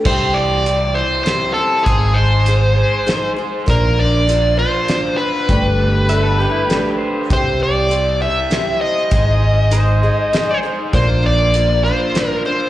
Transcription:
0.05 1.02 C2 medium
0.05 0.66 C3 medium
0.05 0.66 G3 medium
0.05 0.65 C4 medium
0.05 0.65 E4 medium
0.05 0.66 G4 medium
0.05 0.37 C5 medium
0.05 0.67 C5 medium
0.05 kick medium
0.05 crash medium
0.34 1.87 E3 medium
0.34 0.97 D5 loud
0.65 1.86 G3 medium
0.65 1.25 C4 medium
0.65 1.25 E4 soft
0.65 1.26 G4 medium
0.65 1.28 C5 medium
0.65 closed hi-hat medium
0.94 1.86 E4 medium
0.94 1.23 C5 medium
1.24 1.56 C4 medium
1.24 1.57 E4 medium
1.24 1.56 G4 medium
1.24 1.53 C5 medium
1.24 snare medium
1.24 closed hi-hat medium
1.28 1.55 C5 medium
1.53 1.87 G4 soft
1.53 1.86 A4 medium
1.53 1.86 C5 soft
1.58 1.86 C4 soft
1.58 1.86 E4 soft
1.84 2.82 G#1 medium
1.84 2.45 G#3 medium
1.84 2.47 D#4 medium
1.84 2.16 G#4 medium
1.84 2.47 G#4 medium
1.84 2.48 C5 medium
1.84 kick loud
1.84 closed hi-hat medium
2.14 3.06 D#4 medium
2.14 3.32 C5 medium
2.46 3.05 G#3 soft
2.46 3.05 D#4 medium
2.46 3.06 G#4 medium
2.46 3.07 C5 medium
2.46 closed hi-hat medium
2.76 3.67 G#4 medium
3.06 3.37 G#3 medium
3.06 3.37 D#4 medium
3.06 3.37 G#4 medium
3.06 3.35 C5 medium
3.06 snare medium
3.06 closed hi-hat medium
3.36 3.67 D#4 soft
3.36 3.67 G#4 soft
3.36 3.67 C5 medium
3.66 4.64 A#1 medium
3.66 4.26 A#3 medium
3.66 4.27 D4 medium
3.66 4.27 F4 medium
3.66 4.00 A#4 medium
3.66 4.28 C5 medium
3.66 kick loud
3.66 closed hi-hat medium
3.99 4.88 D4 medium
3.99 4.58 D5 loud
4.27 4.58 A#3 soft
4.27 4.58 D4 medium
4.27 4.58 F4 medium
4.27 4.56 C5 medium
4.27 closed hi-hat medium
4.57 4.87 D4 soft
4.57 4.88 F4 soft
4.57 4.88 C5 soft
4.57 5.17 C5 medium
4.88 5.48 D4 medium
4.88 5.49 F4 medium
4.88 snare medium
4.88 closed hi-hat medium
5.17 6.95 B4 medium
5.17 5.49 C5 medium
5.49 6.45 G1 medium
5.49 6.13 G3 medium
5.49 6.08 A3 medium
5.49 6.09 D4 medium
5.49 6.11 G4 medium
5.49 6.10 B4 medium
5.49 kick loud
5.49 closed hi-hat medium
5.79 6.08 A3 medium
6.09 6.39 A3 medium
6.09 6.40 D4 medium
6.09 6.40 G4 medium
6.09 6.39 B4 medium
6.09 6.24 E5 medium
6.09 closed hi-hat medium
6.23 6.38 A4 medium
6.38 6.69 D4 soft
6.38 6.51 G4 medium
6.38 6.70 G4 soft
6.38 6.70 B4 soft
6.51 6.66 E4 medium
6.67 7.30 A3 medium
6.67 7.30 D4 medium
6.67 6.97 G4 medium
6.67 closed hi-hat medium
6.71 7.30 G4 medium
6.71 snare medium
6.98 7.30 B4 medium
6.98 7.28 C5 medium
7.30 8.27 C2 medium
7.30 7.90 C3 medium
7.30 7.91 G3 medium
7.30 7.88 C4 medium
7.30 7.88 E4 medium
7.30 7.89 G4 medium
7.30 7.91 C5 medium
7.30 7.60 C5 medium
7.30 kick loud
7.30 closed hi-hat medium
7.60 9.11 G3 medium
7.60 8.21 D5 medium
7.89 8.20 C4 medium
7.89 8.20 E4 medium
7.89 8.20 G4 medium
7.89 8.19 C5 medium
7.89 closed hi-hat medium
8.21 8.49 C4 soft
8.21 8.49 E4 soft
8.21 8.50 G4 soft
8.21 8.51 C5 soft
8.21 8.81 E5 loud
8.50 9.11 C4 medium
8.50 9.11 E4 medium
8.50 9.11 G4 medium
8.50 9.12 C5 medium
8.50 snare medium
8.50 closed hi-hat medium
8.81 10.63 C5 medium
8.81 10.59 D#5 medium
9.11 10.08 G#1 medium
9.11 9.69 G#3 medium
9.11 9.70 D#4 medium
9.11 9.71 G#4 medium
9.11 9.73 C5 medium
9.11 kick medium
9.11 closed hi-hat medium
9.42 10.31 D#4 medium
9.71 10.02 G#3 medium
9.71 10.02 D#4 medium
9.71 10.03 G#4 medium
9.71 10.31 C5 loud
9.71 10.02 C5 medium
9.71 closed hi-hat medium
10.03 10.34 D#4 soft
10.03 10.33 G#4 soft
10.03 10.33 C5 soft
10.33 10.63 G#3 medium
10.33 10.64 D#4 medium
10.33 10.64 G#4 medium
10.33 10.78 C5 medium
10.33 10.62 C5 medium
10.33 snare medium
10.33 closed hi-hat medium
10.63 10.93 D#4 soft
10.63 10.94 G#4 soft
10.63 10.93 C5 medium
10.93 11.90 A#1 medium
10.93 11.53 A#3 medium
10.93 11.55 D4 medium
10.93 11.54 F4 medium
10.93 11.25 C5 loud
10.93 11.55 C5 medium
10.93 kick loud
10.93 closed hi-hat medium
11.23 12.14 D4 medium
11.23 11.81 D5 loud
11.54 11.84 A#3 medium
11.54 11.85 D4 medium
11.54 11.85 F4 medium
11.54 11.85 C5 medium
11.54 closed hi-hat medium
11.84 12.14 D4 soft
11.84 12.14 F4 soft
11.84 12.28 C5 medium
11.84 12.15 C5 soft
12.14 12.45 A#3 medium
12.14 12.45 D4 medium
12.14 12.45 F4 medium
12.14 12.44 C5 medium
12.14 snare medium
12.14 closed hi-hat medium
12.28 12.41 A#4 medium
12.45 12.69 D4 soft
12.45 12.69 F4 soft
12.45 12.69 C5 soft
12.45 12.69 C5 medium

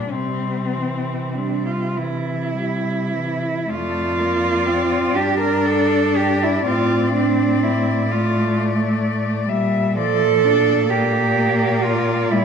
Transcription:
0.00 0.11 A#2 medium
0.00 0.11 G3 soft
0.00 0.13 D4 medium
0.10 3.44 C3 soft
0.10 0.76 G3 soft
0.10 0.75 G3 soft
0.10 1.96 C4 medium
0.74 1.38 E3 soft
0.74 1.35 C4 soft
1.36 1.98 G3 soft
1.36 1.67 D4 soft
1.66 1.98 F4 soft
1.96 2.54 E3 soft
1.96 3.71 E4 medium
2.55 3.15 G3 soft
3.13 3.67 E3 soft
3.68 5.11 F2 medium
3.68 4.20 A3 medium
3.68 5.16 F4 medium
3.68 9.51 D5 medium
4.19 4.68 A#3 soft
4.67 5.16 C4 medium
5.14 6.63 G2 soft
5.14 6.65 D4 medium
5.14 5.39 G4 medium
5.40 5.67 A#4 medium
5.66 6.18 A4 medium
6.16 6.44 G4 medium
6.42 6.66 E4 medium
6.65 9.45 A2 medium
6.65 8.07 C4 medium
6.65 7.13 F4 medium
7.13 7.64 D4 medium
7.63 8.12 E4 medium
8.10 9.46 A3 medium
8.10 8.57 F4 medium
9.49 12.28 A#2 medium
9.49 9.98 G3 medium
9.49 9.96 E5 medium
9.96 10.46 F3 medium
9.96 10.92 A4 medium
9.96 10.44 D5 medium
10.44 10.89 D4 medium
10.44 10.89 D5 medium
10.90 12.33 A#3 medium
10.90 11.86 G4 medium
10.90 12.45 D5 soft
11.84 12.33 F4 medium
12.32 12.45 A#2 medium
12.32 12.45 G3 medium
12.32 12.45 E4 medium

